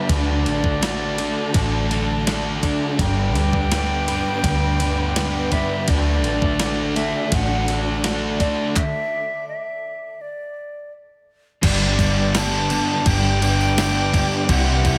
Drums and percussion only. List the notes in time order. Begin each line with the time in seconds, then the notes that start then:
0.09 kick, ride
0.46 ride
0.64 kick
0.83 snare, ride
1.18 ride
1.54 kick, ride
1.91 ride
2.27 snare, ride
2.63 kick, ride
2.99 kick, ride
3.35 ride
3.53 kick
3.72 snare, ride
4.08 ride
4.44 kick, ride
4.80 ride
5.16 snare, ride
5.52 kick, ride
5.88 kick, ride
6.24 ride
6.42 kick
6.59 snare, ride
6.96 ride
7.32 kick, ride
7.68 ride
8.04 snare, ride
8.40 kick, ride
8.76 kick, clap
11.63 kick, crash
11.99 kick, tambourine, crash
12.35 snare, tambourine, crash
12.53 tambourine
12.70 tambourine, crash
13.06 kick, crash
13.24 tambourine
13.42 tambourine, crash
13.61 tambourine
13.78 snare, tambourine, crash
14.13 kick, snare, crash
14.32 tambourine
14.49 kick, crash
14.85 kick, tambourine, crash